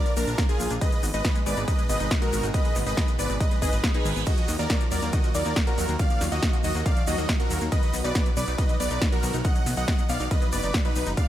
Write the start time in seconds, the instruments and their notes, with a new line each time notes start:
Already playing: analog synth pad A#2 D3 F3 D4 F4, supersaw synth A#4 D5, digital synth lead D5
0.06 synth arpeggio sound F3, closed hi-hat
0.17 analog synth bass A#1, synth arpeggio sound A#3, supersaw synth D4 A#4, digital synth lead A#4, open hi-hat, shaker
0.27 analog synth bass A#1, synth arpeggio sound D4, closed hi-hat, shaker
0.38 synth arpeggio sound D3, kick, snare, closed hi-hat, shaker
0.49 synth arpeggio sound F3, supersaw synth F4 G#4, digital synth lead G#4, closed hi-hat
0.60 analog synth bass A#1, synth arpeggio sound A#3, open hi-hat, shaker
0.70 analog synth bass A#1, synth arpeggio sound D4, closed hi-hat, shaker
0.81 analog synth pad B2 D#3 G#3 D#4 G#4, synth arpeggio sound D#3, supersaw synth B4 D#5, digital synth lead D#5, kick, closed hi-hat, shaker
0.92 synth arpeggio sound G#3, closed hi-hat
1.03 analog synth bass G#1, synth arpeggio sound B3, open hi-hat, shaker
1.14 analog synth bass G#1, synth arpeggio sound D#4, supersaw synth B4 D#5, digital synth lead D#5, closed hi-hat, shaker
1.25 synth arpeggio sound D#3, kick, snare, closed hi-hat, shaker
1.35 synth arpeggio sound G#3, closed hi-hat
1.46 analog synth bass G#1, synth arpeggio sound B3, supersaw synth B4 D5, digital synth lead D5, open hi-hat, shaker
1.57 analog synth bass G#1, synth arpeggio sound D#4, closed hi-hat, shaker
1.68 synth arpeggio sound D#3, supersaw synth B4 D#5, digital synth lead D#5, kick, closed hi-hat, shaker
1.79 synth arpeggio sound G#3, closed hi-hat
1.89 analog synth bass G#1, synth arpeggio sound B3, supersaw synth B4 D#5, digital synth lead D#5, open hi-hat, shaker
2.00 analog synth bass G#1, synth arpeggio sound D#4, closed hi-hat, shaker
2.11 synth arpeggio sound D#3, kick, snare, closed hi-hat, shaker
2.22 synth arpeggio sound G#3, supersaw synth F#4 A#4, digital synth lead A#4, closed hi-hat
2.33 analog synth bass G#1, synth arpeggio sound B3, open hi-hat, shaker
2.43 analog synth bass G#1, synth arpeggio sound D#4, closed hi-hat, shaker
2.54 synth arpeggio sound D#3, supersaw synth B4 D#5, digital synth lead D#5, kick, closed hi-hat, shaker
2.65 synth arpeggio sound G#3, closed hi-hat
2.75 analog synth bass G#1, synth arpeggio sound B3, snare, open hi-hat, shaker
2.86 analog synth bass G#1, synth arpeggio sound D#4, supersaw synth B4 D#5, digital synth lead D#5, closed hi-hat, shaker
2.97 synth arpeggio sound D#3, kick, snare, closed hi-hat, shaker
3.08 synth arpeggio sound G#3, closed hi-hat
3.19 analog synth bass G#1, synth arpeggio sound B3, supersaw synth B4 D5, digital synth lead D5, open hi-hat, shaker
3.29 analog synth bass G#1, synth arpeggio sound D#4, closed hi-hat, shaker
3.40 synth arpeggio sound D#3, supersaw synth B4 D#5, digital synth lead D#5, kick, closed hi-hat, reverse cymbal, shaker
3.51 synth arpeggio sound G#3, closed hi-hat
3.62 analog synth bass G#1, synth arpeggio sound G#4, supersaw synth B4 D#5, digital synth lead D#5, kick, open hi-hat, shaker
3.73 analog synth bass G#1, synth arpeggio sound B4, closed hi-hat, shaker
3.84 synth arpeggio sound B3, kick, snare, closed hi-hat, shaker
3.94 synth arpeggio sound D#4, supersaw synth G#4 B4, digital synth lead B4, closed hi-hat
4.05 analog synth bass G#1, synth arpeggio sound D#3, open hi-hat, shaker
4.16 analog synth bass G#1, synth arpeggio sound B3, closed hi-hat, shaker
4.27 synth arpeggio sound D#3, analog synth pad F#3 A#3 F4 F#4, supersaw synth F#4 D#5, digital synth lead D#5, kick, closed hi-hat, ride, crash, shaker
4.37 synth arpeggio sound F3, closed hi-hat
4.48 analog synth bass D#2, synth arpeggio sound F#3, open hi-hat, ride, shaker
4.59 analog synth bass D#2, synth arpeggio sound A#3, supersaw synth A#4 D5, digital synth lead D5, closed hi-hat, shaker
4.70 synth arpeggio sound D#3, kick, snare, closed hi-hat, ride, shaker
4.81 synth arpeggio sound F3, closed hi-hat
4.91 analog synth bass D#2, synth arpeggio sound F#3, supersaw synth A#4 D5, digital synth lead D5, open hi-hat, ride, shaker
5.02 analog synth bass D#2, synth arpeggio sound A#3, closed hi-hat, shaker
5.12 synth arpeggio sound D#3, supersaw synth F#4 D#5, digital synth lead D#5, kick, closed hi-hat, ride, shaker
5.24 synth arpeggio sound F3, closed hi-hat
5.35 analog synth bass D#2, synth arpeggio sound F#3, supersaw synth A#4 D5, digital synth lead D5, open hi-hat, ride, shaker
5.45 analog synth bass D#2, synth arpeggio sound A#3, closed hi-hat, shaker
5.56 synth arpeggio sound D#3, kick, snare, closed hi-hat, ride, shaker
5.67 synth arpeggio sound F3, supersaw synth F#4 A#4, digital synth lead A#4, closed hi-hat
5.78 analog synth bass D#2, synth arpeggio sound F#3, open hi-hat, ride, shaker
5.88 analog synth bass D#2, synth arpeggio sound A#3, closed hi-hat, shaker
5.99 synth arpeggio sound D#3, supersaw synth D5 F5, digital synth lead F5, kick, closed hi-hat, ride, shaker
6.10 synth arpeggio sound F3, closed hi-hat
6.21 analog synth bass D#2, synth arpeggio sound F#3, snare, open hi-hat, ride, shaker
6.32 analog synth bass D#2, synth arpeggio sound A#3, supersaw synth F#4 D#5, digital synth lead D#5, closed hi-hat, shaker
6.43 synth arpeggio sound D#3, kick, snare, closed hi-hat, ride, shaker
6.53 synth arpeggio sound F3, closed hi-hat
6.63 analog synth bass D#2, synth arpeggio sound F#3, supersaw synth F#4 D#5, digital synth lead D#5, open hi-hat, ride, shaker
6.75 analog synth bass D#2, synth arpeggio sound A#3, closed hi-hat, shaker
6.86 synth arpeggio sound D#3, supersaw synth D5 F5, digital synth lead F5, kick, closed hi-hat, ride, shaker
6.97 synth arpeggio sound F3, closed hi-hat
7.07 analog synth bass D#2, synth arpeggio sound F#3, supersaw synth F#4 D#5, digital synth lead D#5, open hi-hat, ride, shaker
7.18 analog synth bass D#2, synth arpeggio sound A#3, closed hi-hat, shaker
7.29 synth arpeggio sound D#3, kick, snare, closed hi-hat, ride, shaker
7.40 synth arpeggio sound F3, supersaw synth F#4 A#4, digital synth lead A#4, closed hi-hat
7.50 analog synth bass D#2, synth arpeggio sound F#3, open hi-hat, ride, shaker
7.61 analog synth bass D#2, synth arpeggio sound A#3, closed hi-hat, shaker
7.72 analog synth pad B2 D#4, synth arpeggio sound D#3, supersaw synth B4 D#5, digital synth lead D#5, kick, closed hi-hat, ride, shaker
7.83 synth arpeggio sound F#3, closed hi-hat
7.94 analog synth bass B1, synth arpeggio sound B3, open hi-hat, ride, shaker
8.04 analog synth bass B1, synth arpeggio sound D#4, supersaw synth B4 D5, digital synth lead D5, closed hi-hat, shaker
8.15 synth arpeggio sound D#3, kick, snare, closed hi-hat, ride, shaker
8.26 synth arpeggio sound F#3, closed hi-hat
8.37 analog synth bass B1, synth arpeggio sound B3, supersaw synth B4 D5, digital synth lead D5, open hi-hat, ride, shaker
8.48 analog synth bass B1, synth arpeggio sound D#4, closed hi-hat, shaker
8.58 synth arpeggio sound D#3, supersaw synth B4 D#5, digital synth lead D#5, kick, closed hi-hat, ride, shaker
8.69 synth arpeggio sound F#3, closed hi-hat
8.80 analog synth bass B1, synth arpeggio sound B3, supersaw synth B4 D5, digital synth lead D5, open hi-hat, ride, shaker
8.90 analog synth bass B1, synth arpeggio sound D#4, closed hi-hat, shaker
9.02 synth arpeggio sound D#3, kick, snare, closed hi-hat, ride, shaker
9.12 synth arpeggio sound F#3, supersaw synth F#4 A#4, digital synth lead A#4, closed hi-hat
9.23 analog synth bass B1, synth arpeggio sound B3, open hi-hat, ride, shaker
9.34 analog synth bass B1, synth arpeggio sound D#4, closed hi-hat, shaker
9.44 synth arpeggio sound D#3, supersaw synth D#5 F#5, digital synth lead F#5, kick, closed hi-hat, ride, shaker
9.55 synth arpeggio sound F#3, closed hi-hat
9.66 analog synth bass B1, synth arpeggio sound B3, snare, open hi-hat, ride, shaker
9.77 analog synth bass B1, synth arpeggio sound D#4, supersaw synth D#5 F#5, digital synth lead F#5, closed hi-hat, shaker
9.88 synth arpeggio sound D#3, kick, snare, closed hi-hat, ride, shaker
9.99 synth arpeggio sound F#3, closed hi-hat
10.09 analog synth bass B1, synth arpeggio sound B3, supersaw synth D5 F5, digital synth lead F5, open hi-hat, ride, shaker
10.20 analog synth bass B1, synth arpeggio sound D#4, closed hi-hat, shaker
10.31 synth arpeggio sound D#3, supersaw synth B4 D#5, digital synth lead D#5, kick, closed hi-hat, ride, shaker
10.42 synth arpeggio sound F#3, closed hi-hat
10.52 analog synth bass F#1, synth arpeggio sound B3, supersaw synth B4 D5, digital synth lead D5, open hi-hat, ride, shaker
10.63 analog synth bass F#1, synth arpeggio sound D#4, closed hi-hat, shaker
10.74 synth arpeggio sound D#3, kick, snare, closed hi-hat, ride, shaker
10.85 synth arpeggio sound F#3, supersaw synth D#4 B4, digital synth lead B4, closed hi-hat
10.96 analog synth bass B1, synth arpeggio sound B3, open hi-hat, ride, shaker
11.06 analog synth bass F#1, synth arpeggio sound D#4, closed hi-hat, shaker
11.17 analog synth pad A#2 D3 F3 D4 F4, synth arpeggio sound D3, supersaw synth D5 F5, digital synth lead F5, kick, closed hi-hat, ride, shaker